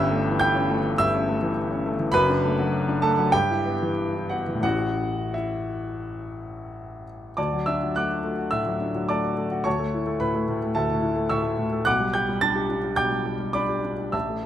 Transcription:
grand piano
Already playing: G1 G2 C#4 E5 E6
0.11 A3
0.28 E3
0.39 G5 G6
0.54 C#4
0.70 A3
0.83 E3
0.98 G2 E5 E6
1.14 C#4
1.29 A3
1.43 E3
1.71 C#4
1.86 A3
1.99 E3
2.12 F#1 F#2 B4 B5
2.29 D4
2.44 A3
2.59 F#3
2.89 D4
3.02 A3 A4 A5
3.19 F#3
3.32 G2 G4 G5
3.50 E4
3.66 B3
3.83 E3
4.16 E4
4.29 B3 F#4 F#5
4.48 E3
4.55 A2
4.61 A1 E3 C#4 E4 F#4 F#5
5.34 E4 E5
7.37 D2 D5 A5 D6
7.53 F#3
7.66 D4 E5 E6
7.83 F#3
7.96 A3 F#5 D6 F#6
8.10 F#4
8.24 A3
8.38 F#4
8.51 A2 E5 E6
8.67 F#3
8.81 D4
8.95 F#3
9.09 A3 D5 A5 D6
9.24 F#4
9.38 A3
9.51 F#4
9.64 D2 C#5 A5 C#6
9.79 A3
9.94 E4
10.07 A3
10.20 A2 B4 B5
10.35 A3
10.48 A2
10.63 A3
10.75 D2 A4 E5 A5
10.90 A2
11.01 E4
11.16 A3
11.29 A2 E5 C#6 E6
11.42 A3
11.58 A2
11.72 A3
11.85 B1 F#5 D6 F#6
12.00 G3
12.14 G4 G5 G6
12.29 G3
12.41 D4 A5 A6
12.55 G4
12.69 D4
12.84 G4
12.96 B1 G5 D6 G6
13.11 G3
13.26 G4
13.39 G3
13.53 D4 D5 B5 D6
13.69 G4
13.84 D4
13.98 G4
14.12 A1 E5 A5 E6
14.29 A3

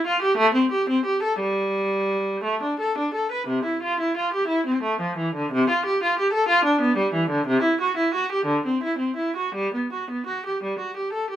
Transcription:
viola
0.07 F4
0.22 G4
0.37 A3
0.54 C4
0.71 G4
0.89 C4
1.05 G4
1.23 A4
1.40 G3
2.44 A3
2.63 D4
2.79 A4
2.98 D4
3.14 A4
3.32 B4
3.47 C3
3.64 E4
3.83 F4
4.00 E4
4.17 F4
4.33 G4
4.47 E4
4.66 C4
4.83 A3
5.01 F3
5.17 E3
5.35 D3
5.52 C3
5.70 F4
5.86 G4
6.03 F4
6.19 G4
6.33 A4
6.48 F4
6.65 D4
6.81 B3
6.97 G3
7.13 E3
7.30 D3
7.47 C3
7.62 E4
7.81 F#4
7.97 E4
8.14 F#4
8.32 G4
8.45 D3
8.66 C4
8.83 E4
8.98 C4
9.16 E4
9.36 F#4
9.55 G3
9.74 B3
9.93 F#4
10.10 B3
10.26 F#4
10.46 G4
10.63 G3
10.79 F#4
10.97 G4
11.12 A4
11.30 G4

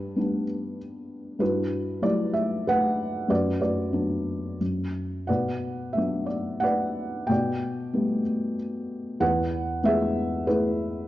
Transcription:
felt piano
Already playing: G2 D4 G4 B4
0.16 G3 B3 D4
1.39 G2 E4 F#4 B4
2.02 F#3 G3 E4 D5
2.33 E5
2.67 B4 F#5
3.28 F#2 F#4 B4 D5
3.61 F#4 B4 D5
3.93 F#3 B3 D4
4.61 F#2
5.27 B2 B4 D5 F#5
5.93 F#3 E5
5.97 B3 D4
6.26 D5
6.60 B4 D5 F#5
7.27 B2 G5
7.31 D5
7.93 G3 A3 B3
9.20 E2 B4 F#5
9.82 E3 G#3 B3 G#4 E5
9.87 B4
10.47 E4 G#4 B4

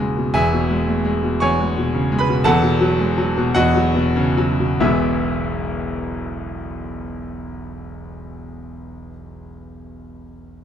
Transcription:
grand piano
Already playing: E1 E2 B2 C#3 A3 E4 F#4 E5 F#5
0.00 G#3
0.17 B2
0.34 E1 E2 G#4 E5 G#5
0.53 B2
0.70 G#3
0.87 A3
1.05 G#3
1.23 B2
1.40 E2 C#5 G#5 C#6
1.60 G#3
1.77 B2
1.94 C#3
2.12 G#3
2.19 B4 B5
2.28 B2
2.44 E1 E2 A4 F#5 A5
2.63 B2
2.81 F#3
3.00 G#3
3.18 F#3
3.37 B2
3.55 E2 F#4 D#5 F#5
3.75 F#3
3.95 B2
4.16 C#3
4.37 F#3
4.60 B2
4.80 E1 B1 E3 G#3 B3 E4 E5

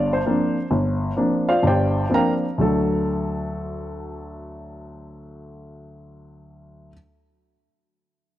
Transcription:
grand piano
Already playing: G1 G2 D5
0.13 C5
0.26 F3 A#3 C4 D4
0.71 G1
1.17 F3 A#3 C4 D4
1.49 F4 C5 D5 F5
1.63 G1 G2
1.67 G4 C5 D5 G5
2.10 F3 A#3 C4 D4
2.14 A#4 F5 G5 A#5
2.58 D2 D3 F#3 A3 A4

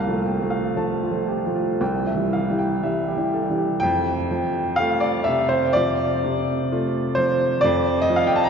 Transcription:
upright piano
Already playing: C2 A5
0.00 F5
0.07 F3 A3
0.25 G5
0.42 F3 A3
0.50 F5
0.77 F3 A3 A5
1.03 F4
1.11 F3 A3
1.29 G4
1.47 F3 A3
1.55 F4
1.81 C2 G5
2.07 E5
2.15 E3 G3
2.33 F5
2.50 E3 G3
2.58 G5
2.83 E3 G3 E5
3.08 G4
3.17 E3 G3
3.34 A4
3.50 E3 G3
3.58 G4
3.80 F2 G5
4.31 F3
4.76 A3 F4 F5
5.00 D5
5.24 C3 E5
5.49 C5
5.73 F3 D5
6.24 C3
6.72 A3 F4
7.15 F3 C5
7.61 F2 D5
8.02 D#5
8.10 F3
8.16 F5
8.27 G5
8.36 A5
8.44 A#5

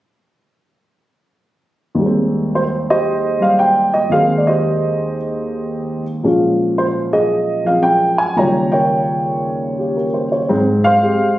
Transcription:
upright piano
1.95 D#2 G3
2.02 G#3
2.06 C4
2.55 C5
2.90 G4 C5 D#5
3.40 G3 F5
3.59 G5
3.94 D#5
4.09 D#2 D#3 G#3 F5
4.14 C4 G#4 C5
4.38 D5
4.47 G4 C5 D#5
6.23 A#2 F3 G#3 C#4
6.78 C5
7.13 G#4 D#5
7.64 F3 C4 F5
7.83 G5
8.18 G#5
8.36 D#2 C#3 G3 F4 C#5 G5 A#5
8.72 A#4 C#5 G5
9.79 G4
9.96 A#4
10.14 C5
10.32 C#5
10.49 G#2 C4
10.84 C5 F5
11.02 G#3 C4 G4

